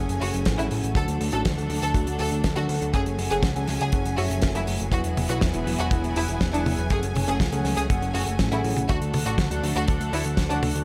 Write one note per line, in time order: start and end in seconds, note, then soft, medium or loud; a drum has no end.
0.00 0.92 F#3 medium
0.00 4.88 A3 medium
0.00 0.18 C#4 medium
0.00 0.94 C#4 medium
0.00 0.18 G#4 medium
0.00 0.18 A4 medium
0.00 0.18 F#5 medium
0.00 0.92 G#5 medium
0.09 0.20 F#1 medium
0.09 closed hi-hat medium
0.21 0.32 F#1 medium
0.21 0.55 C#4 medium
0.21 0.29 F#4 medium
0.21 0.55 G#4 medium
0.21 0.55 A4 medium
0.21 0.55 F#5 medium
0.21 open hi-hat medium
0.34 0.45 F#1 medium
0.34 closed hi-hat medium
0.45 0.57 A1 loud
0.45 kick medium
0.45 snare loud
0.45 closed hi-hat medium
0.58 0.69 A1 medium
0.58 0.92 C#4 medium
0.58 0.66 E4 medium
0.58 0.92 G#4 medium
0.58 0.92 A4 medium
0.58 0.92 F#5 loud
0.58 closed hi-hat soft
0.71 0.82 A1 medium
0.71 open hi-hat medium
0.84 0.94 A1 medium
0.84 closed hi-hat soft
0.95 1.06 D2 loud
0.95 10.84 F#3 medium
0.95 2.92 D4 medium
0.95 1.30 D4 medium
0.95 1.30 F#4 medium
0.95 1.03 A4 medium
0.95 1.30 A4 medium
0.95 2.92 A4 medium
0.95 1.30 F#5 medium
0.95 kick loud
0.95 closed hi-hat medium
1.08 1.19 D2 medium
1.08 closed hi-hat medium
1.20 1.31 D2 loud
1.20 open hi-hat loud
1.32 1.44 A1 medium
1.32 1.48 D4 medium
1.32 1.48 F#4 medium
1.32 1.41 A4 medium
1.32 1.48 A4 medium
1.32 1.48 F#5 loud
1.32 closed hi-hat medium
1.45 1.56 D2 loud
1.45 kick loud
1.45 snare loud
1.45 closed hi-hat medium
1.57 1.68 D2 medium
1.57 1.92 D4 medium
1.57 1.92 F#4 medium
1.57 1.92 A4 medium
1.57 1.92 F#5 medium
1.57 closed hi-hat soft
1.70 1.81 D2 medium
1.70 open hi-hat loud
1.82 1.93 D2 medium
1.82 1.90 A4 medium
1.82 closed hi-hat medium
1.94 2.06 D2 loud
1.94 2.16 D4 medium
1.94 2.16 F#4 medium
1.94 2.16 A4 medium
1.94 2.16 F#5 medium
1.94 kick loud
1.94 closed hi-hat medium
2.07 2.18 D2 medium
2.07 closed hi-hat medium
2.19 2.30 D2 medium
2.19 2.54 D4 medium
2.19 2.54 F#4 medium
2.19 2.27 A4 medium
2.19 2.54 A4 medium
2.19 2.54 F#5 medium
2.19 open hi-hat medium
2.32 2.43 D2 medium
2.32 closed hi-hat soft
2.44 2.55 D2 loud
2.44 kick loud
2.44 snare loud
2.44 closed hi-hat medium
2.56 2.68 D2 medium
2.56 2.91 D4 medium
2.56 2.64 F#4 medium
2.56 2.91 F#4 medium
2.56 2.91 A4 medium
2.56 2.91 F#5 loud
2.56 closed hi-hat soft
2.69 2.80 D2 medium
2.69 open hi-hat medium
2.81 2.92 D2 medium
2.81 closed hi-hat soft
2.94 3.05 F#1 loud
2.94 3.28 C#4 medium
2.94 4.90 C#4 medium
2.94 3.02 G#4 medium
2.94 3.28 G#4 medium
2.94 3.28 A4 medium
2.94 3.28 F#5 medium
2.94 4.90 G#5 medium
2.94 kick loud
2.94 closed hi-hat medium
3.06 3.17 F#1 medium
3.06 closed hi-hat medium
3.19 3.30 F#1 loud
3.19 open hi-hat loud
3.31 3.42 F#1 medium
3.31 3.46 C#4 medium
3.31 3.39 G#4 medium
3.31 3.46 G#4 medium
3.31 3.46 A4 medium
3.31 3.46 F#5 loud
3.31 closed hi-hat medium
3.43 3.54 C#2 loud
3.43 kick loud
3.43 snare loud
3.43 closed hi-hat medium
3.56 3.67 C#2 medium
3.56 3.90 C#4 medium
3.56 3.90 G#4 medium
3.56 3.90 A4 medium
3.56 3.90 F#5 medium
3.56 closed hi-hat soft
3.67 3.79 C#2 medium
3.67 snare soft
3.67 open hi-hat medium
3.81 3.92 C#2 medium
3.81 3.89 G#4 medium
3.81 closed hi-hat medium
3.92 4.04 F#1 loud
3.92 4.15 C#4 medium
3.92 4.15 G#4 medium
3.92 4.15 A4 medium
3.92 4.15 F#5 loud
3.92 kick loud
3.92 closed hi-hat medium
4.05 4.16 F#1 medium
4.05 closed hi-hat medium
4.18 4.29 F#1 medium
4.18 4.52 C#4 loud
4.18 4.26 F#4 medium
4.18 4.52 G#4 medium
4.18 4.52 A4 medium
4.18 4.52 E5 loud
4.18 open hi-hat medium
4.30 4.41 F#1 medium
4.30 closed hi-hat medium
4.42 4.54 F#1 loud
4.42 kick loud
4.42 snare loud
4.42 closed hi-hat medium
4.55 4.66 F#1 medium
4.55 4.89 C#4 medium
4.55 4.63 E4 medium
4.55 4.89 G#4 medium
4.55 4.89 A4 medium
4.55 4.89 F#5 medium
4.55 closed hi-hat medium
4.67 4.78 F#1 medium
4.67 open hi-hat loud
4.80 4.91 F#1 medium
4.80 closed hi-hat soft
4.92 5.03 E1 loud
4.92 6.89 B3 medium
4.92 5.26 E4 medium
4.92 6.89 E4 medium
4.92 5.00 F#4 medium
4.92 5.26 G#4 medium
4.92 5.26 B4 medium
4.92 5.26 F#5 medium
4.92 8.85 G#5 medium
4.92 kick loud
4.92 closed hi-hat medium
5.04 5.16 E1 medium
5.04 closed hi-hat medium
5.17 5.28 E1 loud
5.17 open hi-hat loud
5.17 high tom medium
5.29 5.40 B1 medium
5.29 5.45 E4 medium
5.29 5.37 F#4 medium
5.29 5.45 G#4 medium
5.29 5.45 B4 medium
5.29 5.45 F#5 loud
5.29 closed hi-hat medium
5.41 5.53 E1 loud
5.41 kick loud
5.41 snare loud
5.41 closed hi-hat medium
5.54 5.65 E1 medium
5.54 5.88 E4 medium
5.54 5.88 G#4 medium
5.54 5.88 B4 medium
5.54 5.88 F#5 medium
5.54 closed hi-hat soft
5.66 5.77 E1 medium
5.66 open hi-hat loud
5.78 5.90 E1 medium
5.78 5.87 F#4 medium
5.78 closed hi-hat medium
5.91 6.02 E1 loud
5.91 6.13 E4 medium
5.91 6.13 G#4 medium
5.91 6.13 B4 medium
5.91 6.13 F#5 medium
5.91 kick loud
5.91 closed hi-hat medium
6.04 6.15 E1 medium
6.04 closed hi-hat soft
6.16 6.27 E1 medium
6.16 6.24 E4 medium
6.16 6.50 E4 medium
6.16 6.50 G#4 medium
6.16 6.50 B4 medium
6.16 6.50 F#5 medium
6.16 open hi-hat loud
6.28 6.39 E1 medium
6.28 closed hi-hat soft
6.41 6.52 E1 loud
6.41 kick medium
6.41 snare loud
6.41 closed hi-hat medium
6.53 6.64 E1 medium
6.53 6.61 D4 medium
6.53 6.88 E4 medium
6.53 6.88 G#4 medium
6.53 6.88 B4 medium
6.53 6.88 F#5 loud
6.53 closed hi-hat medium
6.66 6.77 E1 medium
6.66 open hi-hat medium
6.66 high tom medium
6.78 6.89 E1 medium
6.78 closed hi-hat medium
6.90 7.01 F#1 loud
6.90 8.87 A3 medium
6.90 8.87 C#4 medium
6.90 7.25 C#4 medium
6.90 7.25 G#4 medium
6.90 6.98 G#4 medium
6.90 7.25 A4 medium
6.90 7.25 F#5 medium
6.90 kick loud
6.90 closed hi-hat medium
7.03 7.14 F#1 medium
7.03 closed hi-hat medium
7.15 7.26 F#1 loud
7.15 open hi-hat loud
7.15 high tom medium
7.27 7.38 F#1 medium
7.27 7.43 C#4 medium
7.27 7.43 G#4 medium
7.27 7.36 G#4 medium
7.27 7.43 A4 medium
7.27 7.43 F#5 loud
7.27 closed hi-hat medium
7.40 7.51 C#2 loud
7.40 kick loud
7.40 snare loud
7.40 closed hi-hat medium
7.52 7.63 C#2 medium
7.52 7.87 C#4 medium
7.52 7.87 G#4 medium
7.52 7.87 A4 medium
7.52 7.87 F#5 medium
7.52 closed hi-hat medium
7.64 7.76 C#2 medium
7.64 snare soft
7.64 open hi-hat medium
7.77 7.88 C#2 medium
7.77 7.85 G#4 medium
7.77 closed hi-hat medium
7.90 8.01 F#1 loud
7.90 8.12 C#4 medium
7.90 8.12 G#4 medium
7.90 8.12 A4 medium
7.90 8.11 F#5 medium
7.90 kick loud
7.90 closed hi-hat medium
8.02 8.13 F#1 medium
8.02 closed hi-hat soft
8.14 8.25 F#1 medium
8.14 8.49 C#4 medium
8.14 8.22 F#4 medium
8.14 8.49 G#4 medium
8.14 8.49 A4 medium
8.14 8.49 F#5 medium
8.14 open hi-hat loud
8.27 8.38 F#1 medium
8.27 closed hi-hat soft
8.39 8.50 A1 loud
8.39 kick medium
8.39 snare loud
8.39 closed hi-hat medium
8.51 8.63 A1 medium
8.51 8.86 C#4 medium
8.51 8.59 E4 medium
8.51 8.86 G#4 medium
8.51 8.86 A4 medium
8.51 8.86 F#5 loud
8.51 closed hi-hat medium
8.64 8.75 A1 medium
8.64 open hi-hat medium
8.76 8.87 A1 medium
8.76 closed hi-hat medium
8.76 high tom medium
8.89 9.00 D2 loud
8.89 10.84 A3 medium
8.89 10.84 D4 medium
8.89 9.23 D4 medium
8.89 8.97 F#4 loud
8.89 9.23 F#4 medium
8.89 10.84 A4 medium
8.89 9.23 A4 medium
8.89 9.23 F#5 medium
8.89 kick loud
8.89 closed hi-hat medium
9.01 9.12 D2 medium
9.01 closed hi-hat medium
9.13 9.24 D2 loud
9.13 open hi-hat loud
9.13 high tom medium
9.26 9.37 A1 medium
9.26 9.41 D4 medium
9.26 9.34 F#4 medium
9.26 9.41 F#4 medium
9.26 9.41 A4 medium
9.26 9.41 F#5 loud
9.26 closed hi-hat medium
9.38 9.49 D2 loud
9.38 kick medium
9.38 snare loud
9.38 closed hi-hat medium
9.51 9.62 D2 medium
9.51 9.85 D4 medium
9.51 9.85 F#4 medium
9.51 9.85 A4 medium
9.51 9.85 F#5 medium
9.51 closed hi-hat medium
9.63 9.74 D2 medium
9.63 open hi-hat loud
9.76 9.87 D2 medium
9.76 9.84 F#4 medium
9.76 closed hi-hat soft
9.88 9.99 D2 loud
9.88 10.10 D4 medium
9.88 10.10 F#4 medium
9.88 10.10 A4 medium
9.88 10.10 F#5 medium
9.88 kick loud
9.88 closed hi-hat medium
10.00 10.11 D2 medium
10.00 closed hi-hat medium
10.13 10.24 D2 medium
10.13 10.47 D4 medium
10.13 10.21 E4 medium
10.13 10.47 F#4 medium
10.13 10.47 A4 medium
10.13 10.47 F#5 medium
10.13 open hi-hat loud
10.24 10.36 D2 medium
10.24 closed hi-hat medium
10.37 10.48 D2 loud
10.37 kick loud
10.37 snare loud
10.37 closed hi-hat medium
10.50 10.61 D2 medium
10.50 10.58 D4 medium
10.50 10.84 D4 medium
10.50 10.84 F#4 medium
10.50 10.84 A4 medium
10.50 10.84 F#5 loud
10.50 closed hi-hat medium
10.62 10.73 D2 medium
10.62 open hi-hat loud
10.62 high tom medium
10.75 10.84 D2 medium
10.75 closed hi-hat medium